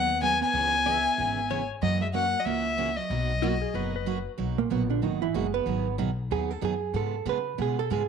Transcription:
Already playing: D#2 F#3 B3 D#4 G#4 F#5
0.22 D#3 F#3 B3 D#4 G#4 G#5
0.42 B3 G#5
0.54 C#2 C#3 E3 B3 C#4 G#4
0.86 C#3 E3 B3 C#4 G#4 E5
1.18 G#1 C#3 E3 B3 C#4 G#4
1.50 C#3 E3 B3 C#4 G#4 C#5
1.81 F#2 C#3 E3 F#3 A#3 C#4 F#4 D#5
2.01 G#3 E5
2.13 C#3 E3 A#3 C#4 F#4 F#5
2.40 F#3 D#5
2.45 C#2 C#3 E3 A#3 C#4 F#4 E5
2.77 C#3 E3 A#3 C#4 F#4
2.97 F#3 D#5
3.10 B1 B2 F#3 A#3 D#4 F#4
3.42 B2 F#3 A#3 D#4 F#4
3.62 G#4
3.74 F#1 B2 F#3 A#3 D#4 F#4 B4
3.96 B4
4.06 B2 F#3 A#3 D#4 F#4
4.38 B1 B2 F#3 A#3 D#4 F#4
4.58 A#2 A#3
4.70 A#1 B2 F#3 A#3 B3 D#4 F#4
4.90 D3 D4
5.02 G#1 B2 D#3 F#3 A#3 D#4 F#4
5.22 E3 E4
5.34 F#1 B2 F#3 G#3 A#3 D#4 F#4 G#4
5.54 B3 B4
5.66 G#1 D#3 F#3 B3 D#4 G#4
5.98 B1 D#3 F#3 B3 D#4 G#4
6.31 D#2 D#3 F#3 B3 D#4 G#4
6.51 A4
6.61 F#2 D#3 F#3 B3 D#4 G#4
6.93 G#2 C#3 G#3 B3 F4 G#4 A4
7.25 C#3 G#3 B3 F4 G#4 B4
7.58 B2 C#3 G#3 B3 F4 G#4
7.79 A4
7.90 G#2 C#3 G#3 B3 F4 G#4

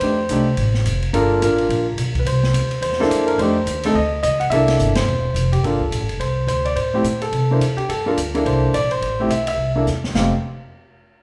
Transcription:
Already playing: C5
0.00 F2 A3 D4 D#4 G4, ride
0.29 C2 A3 D4 D#4 G4, hi-hat pedal, ride
0.57 A1, ride
0.74 snare
0.86 F1, hi-hat pedal, ride
1.03 ride
1.13 G1 A#3 D4 F4 A4 A#4, ride
1.41 A1 A#3 D4 F4 A#4, hi-hat pedal, ride
1.58 ride
1.69 A#1, ride
1.97 B1, hi-hat pedal, ride
2.15 kick, ride
2.19 B4
2.25 C2 C5, ride
2.43 snare
2.53 D2, hi-hat pedal, ride
2.71 ride
2.81 E2 C5, ride
2.93 snare
3.00 A#3 D4 E4 A4, snare
3.10 F#2, hi-hat pedal, ride
3.27 A#4, ride
3.38 F2 A3 D4 D#4 G4 C5, ride
3.66 D#2, hi-hat pedal, ride
3.83 A3 C4 D#4 A4, ride
3.94 D2 D#5
4.23 C#2 D#5, hi-hat pedal, ride
4.40 F#5, ride
4.50 C2 A#3 D4 E4 A4 E5, ride
4.68 snare, ride
4.79 G1, hi-hat pedal
4.95 C5, snare, ride
5.07 E1
5.34 F1, hi-hat pedal, ride
5.52 G4, ride
5.63 G1 A#3 D4 F4 A4, ride
5.81 kick
5.91 A#1, hi-hat pedal, ride
6.01 G1
6.09 F1, ride
6.19 C2 C5, ride
6.47 D2 C5, hi-hat pedal, ride
6.65 D5, ride
6.76 A2 C5, ride
6.94 A3 C4 E4 G4
7.04 A#2, hi-hat pedal, ride
7.22 A4, ride
7.32 C3, ride
7.51 A#3 D4 E4 C5
7.60 F2, hi-hat pedal, ride
7.77 G4, muted upright bass stroke, ride
7.89 G2 A4, ride
8.06 A#3 D4 F4 A4
8.17 D2, hi-hat pedal, ride
8.35 A#3 D4 E4 A4, ride
8.46 C2 C5, ride
8.73 A#1 D5, hi-hat pedal, ride
8.91 C5, ride
9.01 A1, ride
9.20 A3 C4 E4 G4
9.29 B1 E5, hi-hat pedal, ride
9.47 E5, ride
9.58 C2
9.76 A#3 D4 E4 A4
9.86 E2, snare, hi-hat pedal
10.04 snare
10.14 F1 A3 C4 D#4 G4 F5, snare, splash

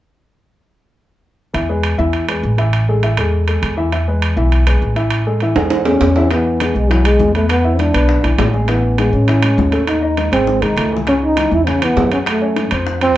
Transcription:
1.54 E2 E3 E4 E5, high timbale
1.69 G#3 G#4 B4
1.83 high timbale
1.98 E2 E3 E4 E5
2.13 high timbale
2.28 G#3 G#4 B4, high timbale
2.43 A1
2.58 E3 E4 E5, high timbale
2.73 high timbale
2.88 G#3 G#4 A4
3.03 E3 E4 E5, high timbale
3.17 E2 G#3 G#4 A4, high timbale
3.48 G#3 G#4 A4, high timbale
3.62 E2, high timbale
3.77 E3 E4 E5
3.92 E3 E4 E5, high timbale
4.07 G#3 G#4 B4
4.22 high timbale
4.36 B1 E3 E4 E5
4.52 high timbale
4.66 G#3 G#4 B4, high timbale
4.82 A1
4.96 E3 E4 E5, high timbale
5.11 high timbale
5.27 G#3 G#4 A4
5.40 E3 E4 E5, high timbale
5.56 E2 G#3 G#4 A4, high timbale
5.70 high timbale
5.85 G#3 C#4 G#4 A4, low timbale
6.01 E2, low timbale
6.16 E3 E4 E5, low timbale
6.31 E3 B3 E4, high bongo, high timbale
6.60 G#3 G#4, high bongo, high timbale
6.75 B1 G#3, high bongo
6.90 E3 F#3 E4, high bongo, high timbale
7.05 G#3 G#4, high bongo, high timbale
7.19 E2, high bongo, low bongo
7.35 A3 B3 B4, high bongo, high timbale
7.49 B3, high bongo, high timbale
7.65 E4 E5
7.79 D4, high bongo, high timbale
7.94 B1 B3 B4, high bongo, high timbale
8.09 high bongo
8.23 B1 E3 E4, high bongo, high timbale
8.38 A1, high bongo, low bongo, high timbale, low timbale
8.53 G#3 G#4, high bongo
8.68 E3 B3 E4, high bongo, high timbale
8.98 G#3 G#4, high bongo, high timbale
9.13 A2 C#4, high bongo
9.28 E3 E4, high bongo, high timbale
9.43 G#3 G#4, high bongo, high timbale
9.58 D#2, high bongo, low bongo
9.72 A3 A4, high bongo, high timbale
9.87 D#4, high bongo, high timbale
10.02 D#4 D#5
10.17 high bongo, high timbale
10.32 G#1 G#3 C4 G#4, high bongo, high timbale
10.47 high bongo
10.62 C2 D#3 G#3 D#4, high timbale
10.76 C#2 A3, high timbale
10.91 E3 E4
10.97 low bongo
11.07 C#3 C#4, high bongo, high timbale
11.23 D#4
11.36 E3 E4, high bongo, high timbale
11.51 E2 E4, high bongo
11.65 C#3 C4 C#4, high bongo, high timbale
11.69 C#4
11.82 E3 B3 E4, high bongo, high timbale
11.96 F#2, high bongo, low bongo, low timbale
12.11 F#3 C#4 F#4, high bongo, high timbale
12.26 A3, high bongo, high timbale
12.42 C#4 C#5
12.56 high bongo, high timbale
12.71 F2 C4 C5, high bongo, high timbale
12.87 high bongo
13.01 F3 C4 F4, high bongo, high timbale

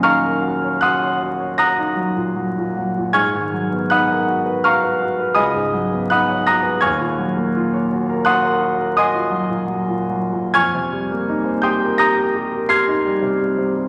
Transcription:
Already playing: D#2 A#2 F#3 C#4 D#5 G#5 C6 D#6
0.03 D#4 F5 A#5 C#6 F6
0.23 A#4
0.42 F#4
0.62 C#5
0.81 F#4 F#5 C6 D#6 F#6
1.01 C#5
1.22 F#4
1.40 C#5
1.58 F#4 A#5 D#6 F#6 A#6
1.78 D#4
1.96 F#3
2.16 A#2
2.36 F#3
2.58 A#2
2.77 F#3
2.98 A#2
3.13 G#2 G#5 C#6 F6 G#6
3.35 D#3
3.53 F#3
3.70 B3
3.90 D#4 F#5 B5 D#6 F#6
4.10 A#4
4.28 F#4
4.46 B4
4.64 F#4 F5 A#5 C#6 F6
4.84 B4
5.01 F#4
5.19 B4
5.35 C#2 D#5 G#5 B5 D#6
5.54 G#2
5.74 F#3
5.91 B3
6.10 D#4 F#5 B5 D#6 F#6
6.29 C#5
6.46 F#4 A#5 D#6 F#6 A#6
6.63 B4
6.81 D#2 G#5 C#6 F6 G#6
7.00 A#2
7.18 F#3
7.37 A#3
7.57 F4
7.73 C#5
7.92 F#4
8.10 A#4
8.25 F#4 F#5 C6 D#6 F#6
8.45 A#4
8.61 F#4
8.80 A#4
8.97 F#4 D#5 G#5 C6 D#6
9.15 F4
9.31 F#3
9.49 A#2
9.67 F#3
9.88 A#2
10.10 F#3
10.32 A#2
10.54 F2 G#5 C#6 F6 G#6
10.75 C3
10.93 G3
11.11 A#3
11.28 D#4
11.44 C5
11.62 G4 G5 C6 D#6 G6
11.81 A#4
11.98 G4 A#5 D#6 G6 A#6
12.17 A#4
12.36 G4
12.52 A#4
12.69 G4 C6 F6 G#6 C7
12.88 D#4
13.05 G3
13.22 C3
13.41 G3
13.58 C3
13.76 G3

